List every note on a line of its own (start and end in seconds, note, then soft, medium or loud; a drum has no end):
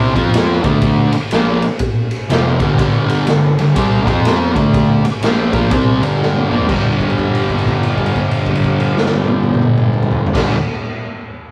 0.00 0.14 C2 medium
0.00 0.14 C3 medium
0.00 0.15 G3 medium
0.00 0.15 C4 medium
0.15 0.61 F2 medium
0.15 0.64 F3 medium
0.15 0.66 C4 medium
0.15 0.66 F4 loud
0.15 kick medium
0.15 ride medium
0.34 snare loud
0.34 ride medium
0.64 1.10 D2 medium
0.64 1.13 D3 medium
0.64 1.13 A3 medium
0.64 1.13 D4 medium
0.64 kick loud
0.64 ride medium
0.82 kick loud
0.82 ride medium
1.12 muted distorted electric guitar stroke medium
1.12 muted picked electric bass stroke soft
1.12 ride medium
1.31 1.61 A#1 loud
1.31 1.62 A#2 medium
1.31 1.63 F3 medium
1.31 1.63 A#3 loud
1.31 snare loud
1.31 ride medium
1.62 ride medium
1.79 kick loud
1.79 ride medium
2.11 ride medium
2.30 2.59 F1 medium
2.30 2.60 F2 medium
2.30 2.60 C3 loud
2.30 2.60 F3 loud
2.30 snare loud
2.30 ride medium
2.59 2.77 G1 medium
2.59 2.78 G2 medium
2.59 2.79 D3 loud
2.59 2.79 G3 medium
2.59 kick loud
2.59 ride medium
2.79 3.24 G1 medium
2.79 3.27 G2 medium
2.79 3.27 D3 loud
2.79 3.28 G3 loud
2.79 kick loud
2.79 ride medium
3.09 ride medium
3.27 3.56 G1 medium
3.27 3.52 G2 medium
3.27 3.53 D3 medium
3.27 snare loud
3.27 ride medium
3.59 3.75 G1 medium
3.59 3.73 G2 medium
3.59 3.74 D3 medium
3.59 ride medium
3.75 4.05 C2 loud
3.75 4.06 C3 medium
3.75 4.07 G3 medium
3.75 4.07 C4 loud
3.75 kick loud
3.75 ride loud
4.06 4.52 F2 loud
4.06 4.55 F3 medium
4.06 4.56 C4 medium
4.06 4.56 F4 loud
4.06 kick loud
4.06 ride medium
4.25 snare loud
4.25 ride medium
4.55 5.01 D2 medium
4.55 5.03 D3 medium
4.55 5.04 A3 medium
4.55 5.04 D4 medium
4.55 kick medium
4.55 ride medium
4.74 kick loud
4.74 ride medium
5.03 muted picked electric bass stroke soft
5.03 muted distorted electric guitar stroke medium
5.03 ride medium
5.21 5.50 A#1 medium
5.21 5.52 A#2 medium
5.21 5.53 F3 medium
5.21 5.53 A#3 loud
5.21 snare loud
5.21 ride medium
5.53 5.70 A#1 medium
5.53 5.71 A#2 medium
5.53 5.71 F3 loud
5.53 5.71 A#3 medium
5.53 kick loud
5.53 ride medium
5.71 6.00 C2 loud
5.71 6.01 C3 medium
5.71 6.01 G3 medium
5.71 6.02 C4 loud
5.71 kick loud
5.71 ride medium
6.01 6.47 G1 medium
6.01 6.50 G2 medium
6.01 6.50 D3 loud
6.01 6.51 G3 medium
6.01 ride medium
6.23 snare medium
6.35 high tom medium
6.50 6.68 A#1 medium
6.50 6.68 A#2 medium
6.50 6.69 F3 medium
6.50 6.69 A#3 medium
6.50 mid tom medium
6.61 floor tom medium
6.67 10.24 G1 medium
6.67 10.27 G2 medium
6.67 10.28 D3 medium
6.67 kick loud
6.67 crash medium
6.72 10.29 G3 loud
7.00 kick medium
7.00 crash soft
7.10 crash soft
7.18 kick medium
7.18 crash soft
7.35 crash soft
7.49 kick medium
7.49 crash soft
7.58 crash soft
7.67 kick medium
7.67 crash medium
7.83 crash soft
7.98 kick medium
7.98 crash soft
8.06 crash soft
8.16 kick medium
8.16 crash soft
8.31 crash soft
8.46 kick medium
8.46 crash medium
8.55 crash medium
8.64 kick medium
8.64 crash medium
8.80 crash medium
8.98 snare medium
9.06 snare medium
9.14 high tom medium
9.28 high tom medium
9.43 high tom medium
9.54 mid tom medium
9.62 mid tom medium
9.78 mid tom loud
9.93 mid tom medium
10.03 mid tom loud
10.11 floor tom medium
10.26 floor tom loud
10.33 10.52 G1 medium
10.33 10.53 G2 medium
10.33 10.54 D3 medium
10.33 kick loud
10.33 snare medium
10.33 crash loud
10.38 10.55 G3 loud